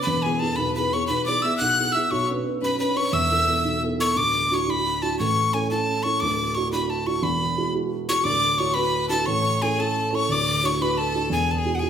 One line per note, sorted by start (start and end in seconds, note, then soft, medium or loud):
0.02 0.24 B5 medium
0.07 1.05 E1 medium
0.07 0.40 E2 medium
0.07 0.27 B4 medium
0.22 0.39 B3 soft
0.22 0.40 E4 soft
0.22 0.45 G#4 medium
0.22 0.40 G#4 medium
0.22 0.41 G#5 loud
0.39 0.68 B3 soft
0.39 0.69 E4 soft
0.39 0.69 G#4 soft
0.39 0.57 A5 loud
0.43 0.62 A4 medium
0.56 0.91 B1 medium
0.56 0.74 B5 loud
0.60 0.77 B4 medium
0.75 0.92 B3 soft
0.75 0.93 E4 medium
0.75 0.93 G#4 medium
0.75 0.95 B4 medium
0.75 0.95 B5 medium
0.93 1.20 B3 medium
0.93 1.21 E4 soft
0.93 1.21 G#4 medium
0.93 1.12 C#5 medium
0.93 1.07 C#6 medium
1.07 1.43 B1 medium
1.07 1.30 B4 medium
1.07 1.24 B5 loud
1.26 1.42 B3 soft
1.26 1.43 E4 soft
1.26 1.43 G#4 medium
1.26 1.46 D5 medium
1.26 1.44 D6 loud
1.42 1.71 B3 soft
1.42 1.71 E4 soft
1.42 1.72 G#4 medium
1.42 1.62 E5 medium
1.42 1.57 E6 loud
1.57 1.94 B1 medium
1.57 1.96 F#5 loud
1.57 1.94 F#6 loud
1.78 1.94 B3 soft
1.78 1.94 E4 soft
1.78 1.94 G#4 soft
1.92 2.08 B3 soft
1.92 2.08 E4 soft
1.92 2.09 G#4 medium
1.92 2.11 E5 medium
1.92 2.12 E6 loud
2.11 3.09 B1 medium
2.11 2.45 B2 medium
2.11 2.28 C#5 medium
2.11 2.29 C#6 loud
2.30 2.44 C#4 soft
2.30 2.44 D4 soft
2.30 2.44 B4 medium
2.45 2.73 C#4 soft
2.45 2.73 D4 soft
2.45 2.73 B4 medium
2.61 2.96 F#2 medium
2.61 2.78 B4 medium
2.61 2.79 B5 medium
2.79 2.94 C#4 soft
2.79 2.95 D4 soft
2.79 2.97 B4 medium
2.79 2.95 B4 medium
2.79 2.98 B5 medium
2.96 3.09 C#4 medium
2.96 3.10 D4 soft
2.96 3.10 B4 medium
2.96 3.14 C#5 medium
2.96 3.15 C#6 loud
3.12 4.11 E1 medium
3.12 3.47 E2 medium
3.12 3.82 E5 medium
3.12 3.82 E6 loud
3.30 3.46 B3 soft
3.30 3.46 E4 soft
3.30 3.46 A4 medium
3.47 3.75 B3 medium
3.47 3.75 E4 soft
3.47 3.75 A4 medium
3.64 3.98 B1 medium
3.83 3.97 B3 soft
3.83 3.97 E4 soft
3.83 3.97 A4 medium
3.98 4.12 B3 soft
3.98 4.12 E4 soft
3.98 4.12 A4 medium
3.98 4.19 C#6 loud
4.15 5.14 D1 medium
4.15 5.15 D2 medium
4.15 4.55 D6 loud
4.51 4.66 D4 medium
4.51 4.67 E4 soft
4.51 4.67 F#4 medium
4.51 4.71 C#6 loud
4.67 5.00 D4 soft
4.67 5.01 E4 soft
4.67 5.01 F#4 medium
4.67 5.04 B5 loud
5.02 5.18 D4 soft
5.02 5.18 E4 soft
5.02 5.18 F#4 medium
5.02 5.18 A5 medium
5.19 6.17 A1 medium
5.19 6.18 A2 medium
5.19 5.55 C#6 loud
5.53 5.69 C#4 medium
5.53 5.70 E4 soft
5.53 5.70 A4 medium
5.53 5.70 G#5 loud
5.71 6.03 E4 soft
5.71 6.04 A4 medium
5.71 6.04 A5 medium
6.03 6.20 C#4 medium
6.03 6.20 E4 medium
6.03 6.20 A4 medium
6.03 6.22 C#6 loud
6.20 7.19 D1 medium
6.20 7.20 D2 medium
6.20 6.56 D6 loud
6.55 6.71 D4 medium
6.55 6.71 E4 soft
6.55 6.71 F#4 medium
6.55 6.71 C#6 loud
6.72 7.05 D4 medium
6.72 7.05 E4 medium
6.72 7.05 F#4 medium
6.72 6.91 B5 medium
6.90 7.08 A5 medium
7.07 7.22 D4 medium
7.07 7.22 E4 medium
7.07 7.23 F#4 medium
7.07 7.25 C#6 loud
7.22 8.21 E1 medium
7.22 8.22 E2 medium
7.22 7.74 B5 medium
7.57 7.73 G#3 medium
7.57 7.72 E4 soft
7.57 7.73 F#4 medium
7.74 8.07 G#3 medium
7.74 8.07 E4 soft
7.74 8.08 F#4 medium
8.09 8.25 G#3 medium
8.09 8.25 E4 soft
8.09 8.25 F#4 soft
8.09 8.25 C#6 loud
8.24 9.23 D1 medium
8.24 9.24 D2 medium
8.24 8.56 D5 medium
8.24 8.60 D6 loud
8.58 8.75 D4 soft
8.58 8.75 E4 soft
8.58 8.76 F#4 medium
8.58 8.76 C#5 medium
8.58 8.75 C#6 loud
8.74 9.07 D4 soft
8.74 9.08 E4 soft
8.74 9.08 F#4 medium
8.74 9.12 B4 medium
8.74 9.09 B5 loud
9.09 9.26 D4 medium
9.09 9.26 E4 medium
9.09 9.26 F#4 medium
9.09 9.28 A4 medium
9.09 9.27 A5 loud
9.26 10.26 A1 medium
9.26 10.27 A2 medium
9.26 9.63 C#5 medium
9.26 9.63 C#6 loud
9.61 9.76 C#4 soft
9.61 9.77 E4 soft
9.61 9.81 G#4 medium
9.61 9.77 A4 medium
9.61 9.82 G#5 medium
9.78 10.10 C#4 soft
9.78 10.11 E4 soft
9.78 10.11 A4 soft
9.78 10.11 A4 medium
9.78 10.16 A5 loud
10.12 10.28 C#4 medium
10.12 10.29 E4 medium
10.12 10.29 A4 medium
10.12 10.32 C#5 medium
10.12 10.33 C#6 loud
10.28 11.27 D1 medium
10.28 11.28 D2 medium
10.28 10.63 D5 medium
10.28 10.67 D6 loud
10.63 10.79 D4 medium
10.63 10.79 E4 soft
10.63 10.80 F#4 medium
10.63 10.71 C#5 medium
10.63 10.83 C#6 loud
10.80 11.13 D4 medium
10.80 11.13 E4 soft
10.80 11.14 F#4 medium
10.80 11.00 B4 medium
10.80 10.99 B5 medium
10.98 11.34 A4 medium
10.98 11.31 A5 medium
11.15 11.31 D4 medium
11.15 11.31 E4 soft
11.15 11.31 F#4 medium
11.30 11.90 E1 medium
11.30 11.90 E2 medium
11.30 11.55 G#4 medium
11.30 11.53 G#5 loud
11.51 11.60 A5 medium
11.55 11.76 G#4 medium
11.55 11.77 G#5 medium
11.65 11.81 G#3 soft
11.65 11.81 E4 soft
11.65 11.81 F#4 medium
11.75 11.90 G#4 medium
11.75 11.81 F#5 medium
11.79 11.90 G#3 soft
11.79 11.90 E4 soft
11.79 11.90 F#4 medium
11.79 11.90 G#5 medium